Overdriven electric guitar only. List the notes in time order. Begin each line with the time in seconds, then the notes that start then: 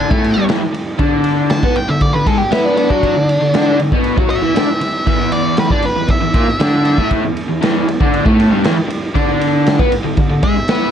Already playing: D4
0.11 A2 A3
0.35 G2 G3
0.48 E2 E3
0.62 muted overdriven electric guitar stroke
0.74 muted overdriven electric guitar stroke
0.99 D3 D4
1.63 B3 B4
1.77 muted overdriven electric guitar stroke
1.89 D3
2.02 D3
2.14 D3
2.27 G#3 G#4
2.40 muted overdriven electric guitar stroke
2.51 B3 B4
2.89 F#3 F#4
3.16 D3
3.41 D3
3.54 D3 D4
3.80 D3
3.93 B2 B3
4.17 F#3 F#4
4.42 E3 E4
4.55 D3 D4
4.68 muted overdriven electric guitar stroke
4.81 muted overdriven electric guitar stroke
5.06 E2 E3
5.71 D3 D4
5.83 muted overdriven electric guitar stroke
5.97 E2
6.08 E2
6.21 E2
6.34 A#2 A#3
6.48 muted overdriven electric guitar stroke
6.60 D3 D4
6.98 A2 A3
7.24 E2
7.49 E2
7.61 E2 E3
7.88 E2
8.00 D3 D4
8.25 A2 A3
8.51 G2 G3
8.64 E2 E3
8.76 muted overdriven electric guitar stroke
8.88 muted overdriven electric guitar stroke
9.15 D3 D4
9.79 B3 B4
9.91 muted overdriven electric guitar stroke
10.04 D3
10.18 D3
10.30 D3
10.43 G#3 G#4
10.57 muted overdriven electric guitar stroke
10.69 B3 B4